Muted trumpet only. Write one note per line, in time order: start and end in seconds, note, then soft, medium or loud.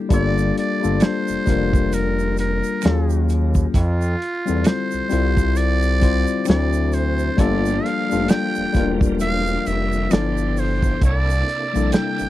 0.13 0.54 D5 loud
0.59 1.05 D5 loud
1.03 1.95 C5 loud
1.94 2.39 A#4 medium
2.40 3.26 A#4 medium
3.77 4.68 F4 loud
4.67 5.58 C5 loud
5.57 6.47 D5 loud
6.49 6.96 D5 loud
6.94 7.41 C5 medium
7.40 7.86 D5 loud
7.85 8.31 F5 loud
8.30 8.96 G5 loud
9.21 9.68 F5 loud
9.67 10.13 E5 loud
10.12 10.61 D5 loud
10.60 11.03 C5 medium
11.05 11.90 D5 loud
11.93 12.29 G5 loud